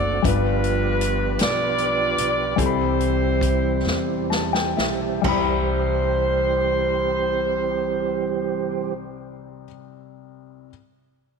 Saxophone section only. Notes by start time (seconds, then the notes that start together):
Already playing: F#4 A4 D5
0.27 D4 F4 B4
1.42 F4 B4 D5
2.60 E4 G4 C5
5.27 C5